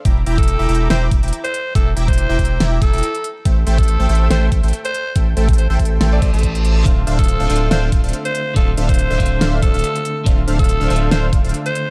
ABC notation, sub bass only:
X:1
M:4/4
L:1/16
Q:"Swing 16ths" 1/4=141
K:Dm
V:1 name="Sub bass" clef=bass
E,,,2 E,,,3 E,,, E,,,2 E,,,2 E,,, E,,, z4 | E,,,2 E,,,3 E,,, E,,,2 E,,,2 E,,, E,,, z4 | A,,,2 A,,,3 A,,, A,,,2 A,,,2 A,,, A,,, z4 | A,,,2 A,,,3 A,,, A,,,2 A,,,2 A,,, A,,,4- A,,, |
D,,,2 D,,,3 D,,, D,,,2 D,,,2 D,,, D,,, z4 | D,,,2 D,,,3 D,,, D,,,2 D,,,2 D,,, D,,, z4 | D,,,2 D,,,3 D,,, D,,,2 D,,,2 D,,, D,,, z4 |]